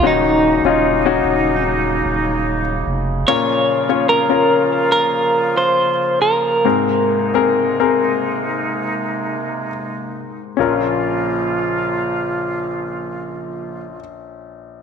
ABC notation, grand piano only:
X:1
M:4/4
L:1/16
Q:1/4=67
K:Bbm
V:1 name="Grand piano"
[DEG]3 [DEF]2 [DEG]8 z3 | [DFB]3 [DFd]2 [DFB]8 z3 | [CAB]3 [CAB]2 [CAB]8 z3 | [DFB]16 |]
V:2 name="Grand piano" clef=bass
E,6 z8 z2 | B,,6 z8 z2 | A,,6 z8 z2 | B,,,16 |]